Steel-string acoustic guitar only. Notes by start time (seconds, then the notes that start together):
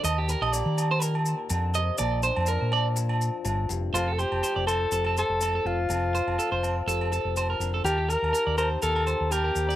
0.04 D#3
0.28 G4
0.53 A#3 G4
1.00 A#2
1.49 D3
1.75 C3
1.99 A#2
2.25 D4
2.48 F3 F4
2.96 F2
3.45 A2
3.69 G2
3.95 A3 C4, muted steel-string acoustic guitar stroke
4.20 C4
4.43 F3
4.67 C4
4.92 C3
5.40 F3
5.66 A3
5.89 F2 A3 C4
6.15 C4
6.39 F3
6.64 C4
6.88 C3
7.36 C3
7.61 D3
7.84 D#3 D#4
8.11 G4
8.34 A#3
8.59 G4
8.83 A#2
9.32 A#3
9.55 C4
9.70 D#4